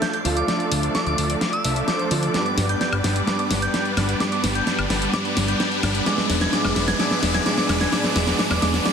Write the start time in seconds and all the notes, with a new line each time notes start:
Already playing: F3 A3 D4 F4 A4 D5 F5 D6, riser
0.02 G6, snare, closed hi-hat
0.13 G6, closed hi-hat
0.24 D2 F3 A3 D4 F4 A4 F5, open hi-hat
0.37 D6, closed hi-hat
0.47 F3 A3 D4 F4 A4 D5 D6, snare, closed hi-hat
0.60 closed hi-hat
0.72 D2, open hi-hat
0.83 closed hi-hat
0.95 F3 A3 D4 A4 D5 D6, snare, closed hi-hat
1.06 D2 D6, closed hi-hat
1.18 D2 F3 A3 D4 A4 D5, open hi-hat
1.30 closed hi-hat
1.41 snare, closed hi-hat
1.53 E6, closed hi-hat
1.64 C2 F3 A3 D4 A4 E5, open hi-hat
1.76 closed hi-hat
1.88 F3 A3 D4 A4 C5 D6, snare, closed hi-hat
1.99 D6, closed hi-hat
2.11 D2 F3 A3 D4 F4 A4 D5, open hi-hat
2.23 closed hi-hat
2.33 G2 G3 B3 D4 G4 B4 D5 G5 D6, snare, closed hi-hat
2.46 D6, closed hi-hat
2.58 G1, snare, open hi-hat
2.69 G6, closed hi-hat
2.81 G3 B3 D4 B4 D5 G6, snare, closed hi-hat
2.92 G1, closed hi-hat, high woodblock
3.04 G1 G3 B3 D4 B4 D5, snare, open hi-hat
3.16 closed hi-hat
3.26 G2 G3 B3 D4 G4 B4 D5 D6, snare, closed hi-hat
3.39 D6, closed hi-hat
3.51 G1, snare, open hi-hat
3.62 G6, closed hi-hat
3.74 G3 B3 D4 B4 D5 G6, snare, closed hi-hat
3.86 closed hi-hat
3.97 G1 G3 B3 D4 B4 D5, snare, open hi-hat, high woodblock
4.09 closed hi-hat
4.19 G2 G3 B3 D4 G4 B4 D5 D6, snare, closed hi-hat
4.32 D6, closed hi-hat
4.44 G1, snare, open hi-hat
4.55 G6, closed hi-hat
4.67 G3 B3 D4 B4 D5 G6, snare, closed hi-hat
4.78 G1, closed hi-hat, high woodblock
4.90 G1 G3 B3 D4 B4 D5, snare, open hi-hat
5.02 closed hi-hat
5.12 G2 G3 B3 D4 G4 B4 D5 D6, snare, closed hi-hat
5.25 D6, closed hi-hat
5.37 G1, snare, open hi-hat
5.48 G6, closed hi-hat
5.60 G3 B3 D4 B4 D5 G6, snare, closed hi-hat
5.72 closed hi-hat
5.83 G1 G3 B3 D4 B4 D5, snare, open hi-hat, high woodblock
5.95 closed hi-hat
6.05 G#2 G#3 B3 D4 G#4 B4 D5 E5 G#5 D6 E6, snare, closed hi-hat
6.18 D6, snare, closed hi-hat
6.30 E1, snare, open hi-hat
6.41 G#6, snare, closed hi-hat
6.52 G#2 G#3 B3 D4 G#4 B4 D5 D6, snare, closed hi-hat
6.65 E1 D6, snare, closed hi-hat, high woodblock
6.76 E1, snare, open hi-hat
6.88 G#6, snare, closed hi-hat
6.98 G#2 G#3 B3 D4 G#4 B4 D5 D6, snare, closed hi-hat
7.11 D6, snare, closed hi-hat
7.23 E1, snare, open hi-hat
7.34 G#6, snare, closed hi-hat
7.45 G#2 G#3 B3 D4 G#4 B4 D5 D6, snare, closed hi-hat
7.58 D6, snare, closed hi-hat
7.69 E1, snare, open hi-hat, high woodblock
7.81 G#6, snare, closed hi-hat
7.91 G#2 G#3 B3 D4 G#4 B4 D5 D6, snare, closed hi-hat
8.04 D6, snare, closed hi-hat
8.15 E1 G#2 G#3 B3 D4 G#4 B4 D5 D6, snare, open hi-hat
8.27 D6, snare, closed hi-hat
8.38 G#2 G#3 B3 D4 G#4 B4 D5 D6, snare, closed hi-hat
8.50 E1 D6, snare, closed hi-hat, high woodblock
8.61 E1 G#2 G#3 B3 D4 G#4 B4 D5 D6, snare, open hi-hat
8.74 D6, snare, closed hi-hat
8.84 G#2 G#3 B3 D4 G#4 B4 D5 D6, snare, closed hi-hat